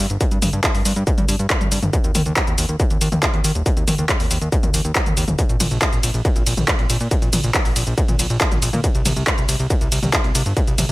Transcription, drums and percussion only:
0.10 closed hi-hat, shaker
0.21 kick, closed hi-hat, shaker
0.31 closed hi-hat, shaker
0.42 open hi-hat, mid tom, shaker
0.53 closed hi-hat, shaker
0.64 kick, clap, closed hi-hat, shaker
0.75 open hi-hat, shaker
0.85 open hi-hat, shaker
0.96 closed hi-hat, shaker
1.07 kick, closed hi-hat, shaker
1.18 closed hi-hat, mid tom, shaker
1.29 open hi-hat, shaker
1.39 closed hi-hat, shaker
1.50 kick, clap, closed hi-hat, shaker
1.61 closed hi-hat, mid tom, shaker
1.72 open hi-hat, shaker
1.83 closed hi-hat, mid tom, shaker
1.93 kick, closed hi-hat, shaker
2.04 closed hi-hat, shaker
2.15 open hi-hat, mid tom, shaker
2.26 closed hi-hat, shaker
2.36 kick, clap, closed hi-hat, shaker
2.47 closed hi-hat, shaker
2.58 open hi-hat, shaker
2.69 closed hi-hat, shaker
2.80 kick, closed hi-hat, shaker
2.90 closed hi-hat, shaker
3.01 open hi-hat, shaker
3.12 closed hi-hat, mid tom, shaker
3.23 kick, clap, closed hi-hat, shaker
3.34 closed hi-hat
3.44 open hi-hat, shaker
3.55 closed hi-hat, shaker
3.66 kick, closed hi-hat, shaker
3.77 closed hi-hat, shaker
3.88 open hi-hat, mid tom, shaker
3.98 closed hi-hat, shaker
4.09 kick, clap, closed hi-hat, shaker
4.20 open hi-hat, shaker
4.31 open hi-hat, shaker
4.42 closed hi-hat, shaker
4.52 kick, closed hi-hat, shaker
4.63 closed hi-hat, mid tom, shaker
4.74 open hi-hat, shaker
4.85 closed hi-hat, shaker
4.95 kick, clap, closed hi-hat, shaker
5.06 closed hi-hat, mid tom, shaker
5.17 open hi-hat, shaker
5.28 closed hi-hat, mid tom, shaker
5.39 kick, closed hi-hat, shaker
5.49 closed hi-hat, shaker
5.60 open hi-hat, mid tom, ride, shaker
5.71 closed hi-hat, shaker
5.82 kick, clap, closed hi-hat, shaker
5.93 closed hi-hat, shaker
6.03 open hi-hat, ride, shaker
6.14 closed hi-hat, shaker
6.25 kick, closed hi-hat, shaker
6.36 closed hi-hat, shaker
6.47 open hi-hat, ride, shaker
6.57 closed hi-hat, mid tom, shaker
6.68 kick, clap, closed hi-hat, shaker
6.79 closed hi-hat
6.90 open hi-hat, ride, shaker
7.00 closed hi-hat, shaker
7.11 kick, closed hi-hat, shaker
7.22 closed hi-hat, shaker
7.33 open hi-hat, mid tom, ride, shaker
7.44 closed hi-hat, shaker
7.54 kick, clap, closed hi-hat, shaker
7.65 open hi-hat, shaker
7.76 open hi-hat, ride, shaker
7.87 closed hi-hat, shaker
7.98 kick, closed hi-hat, shaker
8.08 closed hi-hat, mid tom, shaker
8.19 open hi-hat, ride, shaker
8.30 closed hi-hat, shaker
8.41 kick, clap, closed hi-hat, shaker
8.52 closed hi-hat, mid tom, shaker
8.62 open hi-hat, ride, shaker
8.73 closed hi-hat, mid tom, shaker
8.84 kick, closed hi-hat, shaker
8.95 closed hi-hat, shaker
9.06 open hi-hat, mid tom, ride, shaker
9.16 closed hi-hat, shaker
9.27 kick, clap, closed hi-hat, shaker
9.38 closed hi-hat, shaker
9.49 open hi-hat, ride, shaker
9.59 closed hi-hat, shaker
9.70 kick, closed hi-hat, shaker
9.81 closed hi-hat, shaker
9.92 open hi-hat, ride, shaker
10.03 closed hi-hat, mid tom, shaker
10.13 kick, clap, closed hi-hat, shaker
10.24 closed hi-hat
10.35 open hi-hat, ride, shaker
10.46 closed hi-hat, shaker
10.57 kick, closed hi-hat, shaker
10.67 closed hi-hat, shaker
10.78 open hi-hat, mid tom, ride, shaker

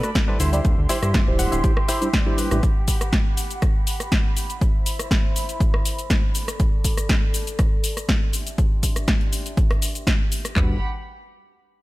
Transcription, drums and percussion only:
0.03 cross-stick, closed hi-hat, shaker
0.15 kick, snare, closed hi-hat, shaker
0.40 open hi-hat, shaker
0.53 closed hi-hat, shaker
0.65 kick, closed hi-hat, shaker
0.89 open hi-hat, shaker
1.03 cross-stick, closed hi-hat, shaker
1.14 kick, snare, closed hi-hat, shaker
1.39 open hi-hat, shaker
1.52 closed hi-hat, shaker
1.64 kick, closed hi-hat, shaker
1.77 cross-stick
1.89 open hi-hat, shaker
2.02 closed hi-hat, shaker
2.13 kick, snare, closed hi-hat, shaker
2.38 open hi-hat, shaker
2.51 cross-stick, closed hi-hat, shaker
2.63 kick, closed hi-hat, shaker
2.88 kick, open hi-hat, shaker
3.01 cross-stick, closed hi-hat, shaker
3.13 kick, snare, closed hi-hat, shaker
3.37 open hi-hat, shaker
3.51 closed hi-hat, shaker
3.62 kick, cross-stick, closed hi-hat, shaker
3.87 open hi-hat, shaker
4.00 cross-stick, closed hi-hat, shaker
4.12 kick, snare, closed hi-hat, shaker
4.37 open hi-hat, shaker
4.50 closed hi-hat, shaker
4.61 kick, closed hi-hat, shaker
4.86 open hi-hat, shaker
4.99 cross-stick, closed hi-hat, shaker
5.11 kick, snare, closed hi-hat, shaker
5.36 open hi-hat, shaker
5.49 closed hi-hat, shaker
5.60 kick, closed hi-hat, shaker
5.74 cross-stick
5.85 open hi-hat, shaker
5.99 closed hi-hat, shaker
6.10 kick, snare, closed hi-hat, shaker
6.35 open hi-hat, shaker
6.48 cross-stick, closed hi-hat, shaker
6.60 kick, closed hi-hat, shaker
6.84 kick, open hi-hat, shaker
6.97 cross-stick, closed hi-hat, shaker
7.09 kick, snare, closed hi-hat, shaker
7.34 open hi-hat, shaker
7.47 closed hi-hat, shaker
7.59 kick, cross-stick, closed hi-hat, shaker
7.84 open hi-hat, shaker
7.97 cross-stick, closed hi-hat, shaker
8.09 kick, snare, closed hi-hat, shaker
8.33 open hi-hat, shaker
8.47 closed hi-hat, shaker
8.58 kick, closed hi-hat, shaker
8.83 kick, open hi-hat, shaker
8.96 cross-stick, closed hi-hat, shaker
9.08 kick, snare, closed hi-hat, shaker
9.21 closed hi-hat
9.33 open hi-hat, shaker
9.46 closed hi-hat, shaker
9.57 kick, closed hi-hat, shaker
9.71 cross-stick, closed hi-hat
9.82 open hi-hat, shaker
9.95 closed hi-hat, shaker
10.07 kick, snare, closed hi-hat, shaker
10.32 open hi-hat, shaker
10.45 cross-stick, closed hi-hat, shaker
10.56 kick, clap, floor tom

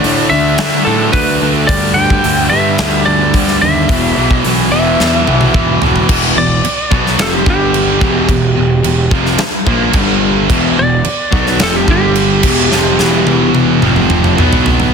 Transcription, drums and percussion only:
0.04 open hi-hat
0.58 snare, open hi-hat
1.13 kick, open hi-hat
1.69 kick, open hi-hat
2.10 kick
2.24 open hi-hat
2.78 snare, open hi-hat
3.34 kick, open hi-hat
3.48 snare
3.89 kick, open hi-hat
4.31 kick
4.45 open hi-hat
5.00 snare
5.27 high tom
5.41 high tom
5.54 kick, mid tom
5.82 floor tom
5.96 floor tom
6.09 kick, crash
6.65 crash
6.92 kick
7.07 snare
7.19 snare, crash
7.46 kick
7.74 crash
8.01 kick
8.29 kick, crash
8.84 crash
9.11 kick
9.26 snare
9.38 snare, crash
9.67 kick
9.93 kick, crash
10.50 kick, crash
11.05 crash
11.32 kick
11.46 snare
11.59 snare, crash
11.88 kick
12.15 crash
12.43 kick, crash
12.72 snare
12.99 snare
13.27 high tom
13.55 high tom
13.82 mid tom
13.96 mid tom
14.10 mid tom
14.24 mid tom
14.38 mid tom
14.53 floor tom
14.66 floor tom
14.80 floor tom

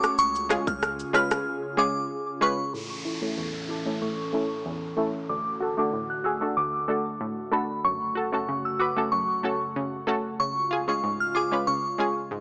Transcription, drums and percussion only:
0.04 cross-stick, shaker
0.18 shaker
0.35 shaker
0.50 cross-stick, closed hi-hat, shaker
0.67 kick, shaker
0.83 cross-stick, shaker
0.99 shaker
1.14 cross-stick, closed hi-hat, shaker
1.31 cross-stick, shaker

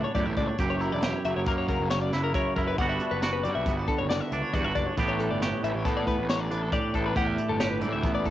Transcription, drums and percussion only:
0.15 kick, closed hi-hat
0.37 kick, closed hi-hat
0.58 kick, closed hi-hat
0.80 closed hi-hat
1.02 snare, closed hi-hat
1.24 closed hi-hat
1.46 kick, closed hi-hat
1.68 kick, closed hi-hat
1.90 snare, closed hi-hat
2.13 snare, closed hi-hat
2.34 kick, closed hi-hat
2.56 kick, closed hi-hat
2.78 kick, closed hi-hat
3.00 closed hi-hat
3.22 snare, closed hi-hat
3.45 closed hi-hat
3.66 kick, closed hi-hat
3.87 kick, closed hi-hat
4.10 snare, closed hi-hat
4.32 closed hi-hat
4.53 kick, closed hi-hat
4.75 kick, closed hi-hat
4.97 kick, closed hi-hat
5.20 closed hi-hat
5.42 snare, closed hi-hat
5.64 closed hi-hat
5.85 kick, closed hi-hat
6.07 kick, closed hi-hat
6.29 snare, closed hi-hat
6.51 closed hi-hat
6.72 kick, closed hi-hat
6.94 kick, closed hi-hat
7.16 kick, closed hi-hat
7.38 closed hi-hat
7.60 snare, closed hi-hat
7.81 closed hi-hat
8.04 kick, closed hi-hat
8.26 kick, closed hi-hat

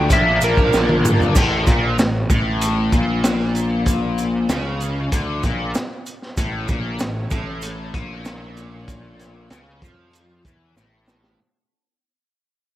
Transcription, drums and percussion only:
0.10 kick, closed hi-hat, shaker
0.41 closed hi-hat, shaker
0.57 kick, shaker
0.73 snare, shaker
0.89 high tom
1.05 mid tom, shaker
1.20 floor tom, shaker
1.35 kick, crash, shaker
1.67 kick, closed hi-hat, shaker
1.99 snare, closed hi-hat, shaker
2.30 kick, closed hi-hat, shaker
2.62 closed hi-hat, shaker
2.92 kick, closed hi-hat, shaker
3.24 snare, closed hi-hat, shaker
3.40 snare
3.55 closed hi-hat, shaker
3.86 kick, closed hi-hat, shaker
4.18 closed hi-hat, shaker
4.49 snare, closed hi-hat, shaker
4.80 closed hi-hat, shaker
5.12 kick, closed hi-hat, shaker
5.43 kick, closed hi-hat, shaker
5.75 snare, closed hi-hat, shaker
6.06 closed hi-hat, shaker
6.22 snare
6.37 kick, closed hi-hat, shaker
6.68 kick, closed hi-hat, shaker
6.99 snare, closed hi-hat, shaker
7.31 kick, closed hi-hat, shaker
7.62 closed hi-hat, shaker
7.94 kick, closed hi-hat
8.25 snare, closed hi-hat, shaker
8.57 closed hi-hat, shaker
8.88 kick, closed hi-hat, shaker
9.19 snare, closed hi-hat, shaker
9.50 snare, closed hi-hat, shaker
9.82 kick, snare, closed hi-hat, shaker
10.13 closed hi-hat, shaker
10.45 kick, closed hi-hat, shaker
10.77 snare, shaker
11.08 snare, shaker
11.24 snare

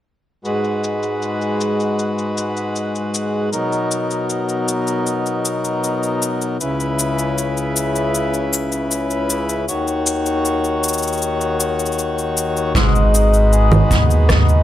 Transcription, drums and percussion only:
0.45 shaker
0.64 shaker
0.84 shaker
1.03 shaker
1.22 shaker
1.42 shaker
1.61 shaker
1.80 shaker
1.99 shaker
2.18 shaker
2.38 shaker
2.57 shaker
2.76 shaker
2.95 shaker
3.14 shaker
3.53 shaker
3.72 shaker
3.91 shaker
4.11 shaker
4.30 shaker
4.49 shaker
4.68 shaker
4.87 shaker
5.07 shaker
5.26 shaker
5.45 shaker
5.65 shaker
5.84 shaker
6.03 shaker
6.22 shaker
6.42 shaker
6.61 shaker
6.80 shaker
6.99 shaker
7.19 shaker
7.38 shaker
7.57 shaker
7.76 shaker
7.96 shaker
8.15 shaker
8.34 shaker
8.53 shaker
8.72 shaker
8.91 shaker
9.11 shaker
9.30 shaker
9.49 shaker
9.69 shaker
9.88 shaker
10.07 shaker
10.26 shaker
10.45 shaker
10.64 shaker
10.84 shaker
10.88 shaker
10.93 shaker
10.98 shaker
11.03 shaker
11.07 shaker
11.13 shaker
11.17 shaker
11.22 shaker
11.41 shaker
11.60 shaker
11.79 shaker
11.86 shaker
11.92 shaker
11.99 shaker
12.18 shaker
12.37 shaker
12.57 shaker
12.75 kick, shaker
12.95 shaker
13.15 shaker
13.34 shaker
13.53 shaker
13.72 low conga, shaker
13.91 kick, shaker
14.11 shaker
14.29 kick, cross-stick, shaker
14.49 shaker

